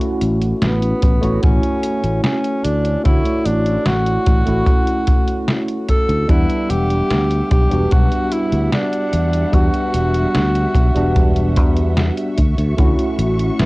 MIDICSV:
0, 0, Header, 1, 6, 480
1, 0, Start_track
1, 0, Key_signature, 2, "major"
1, 0, Tempo, 810811
1, 1806, Time_signature, 4, 2, 24, 8
1, 8084, End_track
2, 0, Start_track
2, 0, Title_t, "String section"
2, 0, Program_c, 0, 48
2, 3726, Note_on_c, 0, 55, 74
2, 3727, Note_on_c, 0, 78, 63
2, 3728, Note_on_c, 0, 76, 66
2, 7303, Note_off_c, 0, 55, 0
2, 7303, Note_off_c, 0, 78, 0
2, 7327, Note_on_c, 0, 85, 72
2, 7328, Note_on_c, 0, 66, 77
2, 8084, Note_off_c, 0, 66, 0
2, 8084, Note_off_c, 0, 76, 0
2, 8084, Note_off_c, 0, 85, 0
2, 8084, End_track
3, 0, Start_track
3, 0, Title_t, "Tenor saxophone"
3, 0, Program_c, 1, 66
3, 365, Note_on_c, 1, 59, 85
3, 822, Note_off_c, 1, 59, 0
3, 850, Note_on_c, 1, 61, 90
3, 1304, Note_off_c, 1, 61, 0
3, 1326, Note_on_c, 1, 61, 90
3, 1564, Note_on_c, 1, 62, 93
3, 1572, Note_off_c, 1, 61, 0
3, 1799, Note_off_c, 1, 62, 0
3, 1803, Note_on_c, 1, 64, 96
3, 2045, Note_on_c, 1, 62, 94
3, 2054, Note_off_c, 1, 64, 0
3, 2287, Note_on_c, 1, 66, 102
3, 2296, Note_off_c, 1, 62, 0
3, 3327, Note_off_c, 1, 66, 0
3, 3486, Note_on_c, 1, 69, 106
3, 3709, Note_off_c, 1, 69, 0
3, 3728, Note_on_c, 1, 64, 104
3, 3968, Note_on_c, 1, 67, 114
3, 3977, Note_off_c, 1, 64, 0
3, 4444, Note_off_c, 1, 67, 0
3, 4448, Note_on_c, 1, 67, 101
3, 4690, Note_on_c, 1, 66, 102
3, 4699, Note_off_c, 1, 67, 0
3, 4931, Note_on_c, 1, 64, 89
3, 4939, Note_off_c, 1, 66, 0
3, 5166, Note_off_c, 1, 64, 0
3, 5170, Note_on_c, 1, 62, 99
3, 5649, Note_on_c, 1, 66, 98
3, 5658, Note_off_c, 1, 62, 0
3, 7088, Note_off_c, 1, 66, 0
3, 8045, Note_on_c, 1, 59, 81
3, 8084, Note_off_c, 1, 59, 0
3, 8084, End_track
4, 0, Start_track
4, 0, Title_t, "Tine electric piano"
4, 0, Program_c, 2, 4
4, 0, Control_c, 2, 64, 127
4, 0, Note_on_c, 2, 57, 81
4, 0, Note_on_c, 2, 61, 75
4, 0, Note_on_c, 2, 64, 74
4, 0, Note_on_c, 2, 66, 94
4, 694, Note_off_c, 2, 57, 0
4, 697, Note_off_c, 2, 61, 0
4, 700, Note_off_c, 2, 64, 0
4, 703, Note_off_c, 2, 66, 0
4, 717, Note_on_c, 2, 57, 84
4, 723, Note_on_c, 2, 73, 72
4, 729, Note_on_c, 2, 64, 73
4, 735, Note_on_c, 2, 66, 92
4, 1773, Note_off_c, 2, 57, 0
4, 1776, Note_off_c, 2, 73, 0
4, 1779, Note_off_c, 2, 64, 0
4, 1782, Note_off_c, 2, 66, 0
4, 1798, Note_on_c, 2, 57, 75
4, 1804, Note_on_c, 2, 73, 68
4, 1810, Note_on_c, 2, 64, 66
4, 1815, Note_on_c, 2, 66, 80
4, 2614, Note_off_c, 2, 57, 0
4, 2617, Note_off_c, 2, 73, 0
4, 2620, Note_off_c, 2, 64, 0
4, 2623, Note_off_c, 2, 66, 0
4, 2638, Note_on_c, 2, 57, 80
4, 2644, Note_on_c, 2, 61, 76
4, 2651, Note_on_c, 2, 64, 76
4, 2656, Note_on_c, 2, 66, 94
4, 3693, Note_off_c, 2, 57, 0
4, 3696, Note_off_c, 2, 61, 0
4, 3700, Note_off_c, 2, 64, 0
4, 3702, Note_off_c, 2, 66, 0
4, 3716, Note_on_c, 2, 55, 82
4, 3722, Note_on_c, 2, 59, 76
4, 3728, Note_on_c, 2, 62, 77
4, 3733, Note_on_c, 2, 78, 91
4, 3734, Control_c, 2, 64, 0
4, 3825, Control_c, 2, 64, 127
4, 4533, Note_off_c, 2, 55, 0
4, 4536, Note_off_c, 2, 59, 0
4, 4539, Note_off_c, 2, 62, 0
4, 4542, Note_off_c, 2, 78, 0
4, 4556, Note_on_c, 2, 55, 76
4, 4562, Note_on_c, 2, 59, 73
4, 4568, Note_on_c, 2, 62, 71
4, 4574, Note_on_c, 2, 66, 84
4, 5612, Note_off_c, 2, 55, 0
4, 5615, Note_off_c, 2, 59, 0
4, 5618, Note_off_c, 2, 62, 0
4, 5621, Note_off_c, 2, 66, 0
4, 5636, Note_on_c, 2, 55, 75
4, 5643, Note_on_c, 2, 59, 71
4, 5648, Note_on_c, 2, 62, 68
4, 5654, Note_on_c, 2, 66, 81
4, 6453, Note_off_c, 2, 55, 0
4, 6456, Note_off_c, 2, 59, 0
4, 6459, Note_off_c, 2, 62, 0
4, 6462, Note_off_c, 2, 66, 0
4, 6479, Note_on_c, 2, 55, 81
4, 6485, Note_on_c, 2, 59, 75
4, 6492, Note_on_c, 2, 62, 72
4, 6497, Note_on_c, 2, 66, 93
4, 7308, Note_off_c, 2, 55, 0
4, 7311, Note_off_c, 2, 59, 0
4, 7314, Note_off_c, 2, 62, 0
4, 7317, Note_off_c, 2, 66, 0
4, 7334, Control_c, 2, 64, 0
4, 7448, Control_c, 2, 64, 127
4, 7559, Note_on_c, 2, 57, 81
4, 7565, Note_on_c, 2, 61, 77
4, 7569, Note_on_c, 2, 64, 78
4, 7576, Note_on_c, 2, 66, 92
4, 8084, Note_off_c, 2, 57, 0
4, 8084, Note_off_c, 2, 61, 0
4, 8084, Note_off_c, 2, 64, 0
4, 8084, Note_off_c, 2, 66, 0
4, 8084, End_track
5, 0, Start_track
5, 0, Title_t, "Fingered electric bass"
5, 0, Program_c, 3, 33
5, 128, Note_on_c, 3, 33, 83
5, 307, Note_off_c, 3, 33, 0
5, 367, Note_on_c, 3, 33, 92
5, 546, Note_off_c, 3, 33, 0
5, 610, Note_on_c, 3, 33, 92
5, 698, Note_off_c, 3, 33, 0
5, 727, Note_on_c, 3, 33, 91
5, 816, Note_off_c, 3, 33, 0
5, 850, Note_on_c, 3, 33, 81
5, 939, Note_off_c, 3, 33, 0
5, 1207, Note_on_c, 3, 33, 95
5, 1296, Note_off_c, 3, 33, 0
5, 1567, Note_on_c, 3, 38, 88
5, 1747, Note_off_c, 3, 38, 0
5, 1809, Note_on_c, 3, 38, 92
5, 1898, Note_off_c, 3, 38, 0
5, 2046, Note_on_c, 3, 33, 80
5, 2226, Note_off_c, 3, 33, 0
5, 2285, Note_on_c, 3, 33, 93
5, 2465, Note_off_c, 3, 33, 0
5, 2527, Note_on_c, 3, 33, 93
5, 2617, Note_off_c, 3, 33, 0
5, 2645, Note_on_c, 3, 33, 88
5, 2735, Note_off_c, 3, 33, 0
5, 3605, Note_on_c, 3, 38, 91
5, 3695, Note_off_c, 3, 38, 0
5, 3724, Note_on_c, 3, 40, 95
5, 3815, Note_off_c, 3, 40, 0
5, 3967, Note_on_c, 3, 28, 84
5, 4147, Note_off_c, 3, 28, 0
5, 4205, Note_on_c, 3, 38, 90
5, 4385, Note_off_c, 3, 38, 0
5, 4447, Note_on_c, 3, 35, 92
5, 4537, Note_off_c, 3, 35, 0
5, 4565, Note_on_c, 3, 28, 91
5, 4655, Note_off_c, 3, 28, 0
5, 4691, Note_on_c, 3, 35, 81
5, 4779, Note_off_c, 3, 35, 0
5, 5047, Note_on_c, 3, 38, 93
5, 5136, Note_off_c, 3, 38, 0
5, 5407, Note_on_c, 3, 40, 92
5, 5586, Note_off_c, 3, 40, 0
5, 5643, Note_on_c, 3, 40, 98
5, 5735, Note_off_c, 3, 40, 0
5, 5886, Note_on_c, 3, 28, 86
5, 6066, Note_off_c, 3, 28, 0
5, 6128, Note_on_c, 3, 38, 93
5, 6307, Note_off_c, 3, 38, 0
5, 6362, Note_on_c, 3, 35, 92
5, 6454, Note_off_c, 3, 35, 0
5, 6486, Note_on_c, 3, 28, 94
5, 6852, Note_off_c, 3, 28, 0
5, 6852, Note_on_c, 3, 40, 97
5, 7161, Note_off_c, 3, 40, 0
5, 7330, Note_on_c, 3, 38, 89
5, 7418, Note_off_c, 3, 38, 0
5, 7447, Note_on_c, 3, 38, 96
5, 7536, Note_off_c, 3, 38, 0
5, 7570, Note_on_c, 3, 38, 94
5, 7658, Note_off_c, 3, 38, 0
5, 7806, Note_on_c, 3, 33, 88
5, 7986, Note_off_c, 3, 33, 0
5, 8047, Note_on_c, 3, 33, 91
5, 8084, Note_off_c, 3, 33, 0
5, 8084, End_track
6, 0, Start_track
6, 0, Title_t, "Drums"
6, 6, Note_on_c, 9, 42, 39
6, 65, Note_off_c, 9, 42, 0
6, 126, Note_on_c, 9, 42, 86
6, 185, Note_off_c, 9, 42, 0
6, 247, Note_on_c, 9, 42, 38
6, 306, Note_off_c, 9, 42, 0
6, 367, Note_on_c, 9, 38, 117
6, 367, Note_on_c, 9, 42, 65
6, 426, Note_off_c, 9, 38, 0
6, 426, Note_off_c, 9, 42, 0
6, 488, Note_on_c, 9, 42, 37
6, 548, Note_off_c, 9, 42, 0
6, 607, Note_on_c, 9, 42, 86
6, 610, Note_on_c, 9, 36, 109
6, 666, Note_off_c, 9, 42, 0
6, 669, Note_off_c, 9, 36, 0
6, 728, Note_on_c, 9, 42, 40
6, 787, Note_off_c, 9, 42, 0
6, 846, Note_on_c, 9, 42, 62
6, 851, Note_on_c, 9, 36, 127
6, 905, Note_off_c, 9, 42, 0
6, 910, Note_off_c, 9, 36, 0
6, 968, Note_on_c, 9, 42, 39
6, 1027, Note_off_c, 9, 42, 0
6, 1086, Note_on_c, 9, 42, 90
6, 1145, Note_off_c, 9, 42, 0
6, 1207, Note_on_c, 9, 42, 40
6, 1266, Note_off_c, 9, 42, 0
6, 1325, Note_on_c, 9, 38, 117
6, 1325, Note_on_c, 9, 42, 65
6, 1385, Note_off_c, 9, 38, 0
6, 1385, Note_off_c, 9, 42, 0
6, 1446, Note_on_c, 9, 42, 37
6, 1505, Note_off_c, 9, 42, 0
6, 1565, Note_on_c, 9, 42, 92
6, 1625, Note_off_c, 9, 42, 0
6, 1686, Note_on_c, 9, 42, 38
6, 1745, Note_off_c, 9, 42, 0
6, 1806, Note_on_c, 9, 42, 62
6, 1808, Note_on_c, 9, 36, 108
6, 1865, Note_off_c, 9, 42, 0
6, 1867, Note_off_c, 9, 36, 0
6, 1926, Note_on_c, 9, 42, 36
6, 1985, Note_off_c, 9, 42, 0
6, 2044, Note_on_c, 9, 42, 85
6, 2104, Note_off_c, 9, 42, 0
6, 2166, Note_on_c, 9, 42, 38
6, 2225, Note_off_c, 9, 42, 0
6, 2283, Note_on_c, 9, 38, 121
6, 2283, Note_on_c, 9, 42, 60
6, 2342, Note_off_c, 9, 38, 0
6, 2342, Note_off_c, 9, 42, 0
6, 2405, Note_on_c, 9, 42, 36
6, 2464, Note_off_c, 9, 42, 0
6, 2524, Note_on_c, 9, 42, 83
6, 2526, Note_on_c, 9, 36, 108
6, 2583, Note_off_c, 9, 42, 0
6, 2586, Note_off_c, 9, 36, 0
6, 2645, Note_on_c, 9, 42, 40
6, 2704, Note_off_c, 9, 42, 0
6, 2762, Note_on_c, 9, 36, 111
6, 2764, Note_on_c, 9, 42, 60
6, 2821, Note_off_c, 9, 36, 0
6, 2824, Note_off_c, 9, 42, 0
6, 2885, Note_on_c, 9, 42, 37
6, 2944, Note_off_c, 9, 42, 0
6, 3003, Note_on_c, 9, 42, 90
6, 3007, Note_on_c, 9, 36, 101
6, 3062, Note_off_c, 9, 42, 0
6, 3066, Note_off_c, 9, 36, 0
6, 3125, Note_on_c, 9, 42, 38
6, 3184, Note_off_c, 9, 42, 0
6, 3245, Note_on_c, 9, 38, 116
6, 3245, Note_on_c, 9, 42, 60
6, 3304, Note_off_c, 9, 38, 0
6, 3304, Note_off_c, 9, 42, 0
6, 3365, Note_on_c, 9, 42, 36
6, 3424, Note_off_c, 9, 42, 0
6, 3485, Note_on_c, 9, 42, 86
6, 3486, Note_on_c, 9, 36, 60
6, 3544, Note_off_c, 9, 42, 0
6, 3546, Note_off_c, 9, 36, 0
6, 3607, Note_on_c, 9, 42, 37
6, 3666, Note_off_c, 9, 42, 0
6, 3724, Note_on_c, 9, 42, 59
6, 3725, Note_on_c, 9, 36, 109
6, 3784, Note_off_c, 9, 36, 0
6, 3784, Note_off_c, 9, 42, 0
6, 3846, Note_on_c, 9, 42, 36
6, 3905, Note_off_c, 9, 42, 0
6, 3966, Note_on_c, 9, 42, 84
6, 4025, Note_off_c, 9, 42, 0
6, 4086, Note_on_c, 9, 42, 37
6, 4146, Note_off_c, 9, 42, 0
6, 4205, Note_on_c, 9, 38, 113
6, 4205, Note_on_c, 9, 42, 62
6, 4265, Note_off_c, 9, 38, 0
6, 4265, Note_off_c, 9, 42, 0
6, 4325, Note_on_c, 9, 42, 36
6, 4384, Note_off_c, 9, 42, 0
6, 4445, Note_on_c, 9, 42, 78
6, 4447, Note_on_c, 9, 36, 102
6, 4504, Note_off_c, 9, 42, 0
6, 4506, Note_off_c, 9, 36, 0
6, 4566, Note_on_c, 9, 42, 36
6, 4625, Note_off_c, 9, 42, 0
6, 4684, Note_on_c, 9, 42, 59
6, 4690, Note_on_c, 9, 36, 118
6, 4743, Note_off_c, 9, 42, 0
6, 4750, Note_off_c, 9, 36, 0
6, 4806, Note_on_c, 9, 42, 37
6, 4865, Note_off_c, 9, 42, 0
6, 4925, Note_on_c, 9, 42, 88
6, 4984, Note_off_c, 9, 42, 0
6, 5046, Note_on_c, 9, 42, 37
6, 5106, Note_off_c, 9, 42, 0
6, 5165, Note_on_c, 9, 38, 113
6, 5165, Note_on_c, 9, 42, 58
6, 5224, Note_off_c, 9, 38, 0
6, 5224, Note_off_c, 9, 42, 0
6, 5286, Note_on_c, 9, 42, 37
6, 5345, Note_off_c, 9, 42, 0
6, 5405, Note_on_c, 9, 42, 84
6, 5464, Note_off_c, 9, 42, 0
6, 5525, Note_on_c, 9, 42, 35
6, 5584, Note_off_c, 9, 42, 0
6, 5643, Note_on_c, 9, 36, 94
6, 5645, Note_on_c, 9, 42, 60
6, 5702, Note_off_c, 9, 36, 0
6, 5704, Note_off_c, 9, 42, 0
6, 5765, Note_on_c, 9, 42, 35
6, 5825, Note_off_c, 9, 42, 0
6, 5884, Note_on_c, 9, 42, 82
6, 5944, Note_off_c, 9, 42, 0
6, 6005, Note_on_c, 9, 42, 36
6, 6064, Note_off_c, 9, 42, 0
6, 6125, Note_on_c, 9, 38, 113
6, 6125, Note_on_c, 9, 42, 62
6, 6184, Note_off_c, 9, 38, 0
6, 6184, Note_off_c, 9, 42, 0
6, 6246, Note_on_c, 9, 42, 37
6, 6306, Note_off_c, 9, 42, 0
6, 6361, Note_on_c, 9, 36, 92
6, 6366, Note_on_c, 9, 42, 79
6, 6421, Note_off_c, 9, 36, 0
6, 6425, Note_off_c, 9, 42, 0
6, 6487, Note_on_c, 9, 42, 36
6, 6546, Note_off_c, 9, 42, 0
6, 6607, Note_on_c, 9, 36, 112
6, 6607, Note_on_c, 9, 42, 59
6, 6666, Note_off_c, 9, 36, 0
6, 6666, Note_off_c, 9, 42, 0
6, 6726, Note_on_c, 9, 42, 37
6, 6785, Note_off_c, 9, 42, 0
6, 6846, Note_on_c, 9, 42, 86
6, 6851, Note_on_c, 9, 36, 96
6, 6905, Note_off_c, 9, 42, 0
6, 6910, Note_off_c, 9, 36, 0
6, 6966, Note_on_c, 9, 42, 36
6, 7025, Note_off_c, 9, 42, 0
6, 7086, Note_on_c, 9, 38, 110
6, 7086, Note_on_c, 9, 42, 61
6, 7145, Note_off_c, 9, 38, 0
6, 7145, Note_off_c, 9, 42, 0
6, 7207, Note_on_c, 9, 42, 37
6, 7266, Note_off_c, 9, 42, 0
6, 7327, Note_on_c, 9, 42, 82
6, 7330, Note_on_c, 9, 36, 60
6, 7386, Note_off_c, 9, 42, 0
6, 7389, Note_off_c, 9, 36, 0
6, 7448, Note_on_c, 9, 42, 35
6, 7508, Note_off_c, 9, 42, 0
6, 7567, Note_on_c, 9, 42, 62
6, 7569, Note_on_c, 9, 36, 106
6, 7627, Note_off_c, 9, 42, 0
6, 7628, Note_off_c, 9, 36, 0
6, 7689, Note_on_c, 9, 42, 36
6, 7749, Note_off_c, 9, 42, 0
6, 7808, Note_on_c, 9, 42, 86
6, 7867, Note_off_c, 9, 42, 0
6, 7929, Note_on_c, 9, 42, 39
6, 7988, Note_off_c, 9, 42, 0
6, 8048, Note_on_c, 9, 38, 114
6, 8048, Note_on_c, 9, 42, 62
6, 8084, Note_off_c, 9, 38, 0
6, 8084, Note_off_c, 9, 42, 0
6, 8084, End_track
0, 0, End_of_file